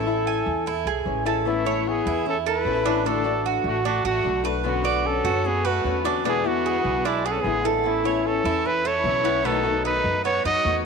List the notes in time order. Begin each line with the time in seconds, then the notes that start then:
Already playing: A1 E4 A4
0.07 C#4 E4
0.27 G#5
0.46 E2
0.66 E4, muted nylon-string guitar stroke
0.86 B1 G#4
1.05 A1 E3 G#3 C#4 E4
1.26 G#3 C#4 E4 A4
1.45 E3 A3 B3 C#4 E4
1.65 B3 C#4 E4 C#5
1.87 B3 G#4
2.06 E2 E4
2.25 C#4 A4, muted nylon-string guitar stroke
2.46 E4 A4 B4
2.65 A1 E3 B3 C#4 E4
2.85 B3 C#4 D4 E4
3.05 D3 A3 D4 F#4 A4
3.24 A3 D4 F#4
3.46 F#4
3.64 A1 A3 F#4
3.84 A3 D4 F#4, muted nylon-string guitar stroke
4.04 A1 A3 F#4
4.23 B1 D3 A3 D4 F#4
4.44 A3 D4 F#4 B4
4.63 B2 D3 B3 C#4 F#4
4.84 D3 B3 F#4 D5
5.05 C#4 A4
5.24 F#2 F#4
5.44 B3 G#4, muted nylon-string guitar stroke
5.65 A3 F#4 B4
5.84 E2 D3 B3 C#4 F#4
6.04 D3 B3 C#4 D4 F#4
6.24 B2 D3 G#3 B3 D4 E4
6.28 G#4
6.44 D3 G#3 B3 E4 F#4
6.66 G#4
6.84 B1
7.04 G#3 D4 E4, muted nylon-string guitar stroke
7.25 B3 G#4
7.31 C#4 A4
7.39 B3 G#4
7.44 A1 D3 G#3 B3 E4
7.64 D3 G#3 B3 E4 A4
7.84 E3 A3 B3 C#4 E4
8.04 B3 C#4 E4 C#5
8.25 C#4 A4
8.44 E2 E4
8.65 E4 B4, muted nylon-string guitar stroke
8.85 E4 A4 C#5
9.04 B1 E3 B3 C#4 E4
9.24 B3 C#4 E4
9.43 B2 D#3 A3 B3 D#4 F#4 A4
9.63 D#3 A3 B3 F#4
9.85 D#4 B4
10.04 F#2
10.24 B3 F#4 C#5, muted nylon-string guitar stroke
10.45 F#2 D#4 F#4 D#5
10.65 E2 D#3 A3 B3 F#4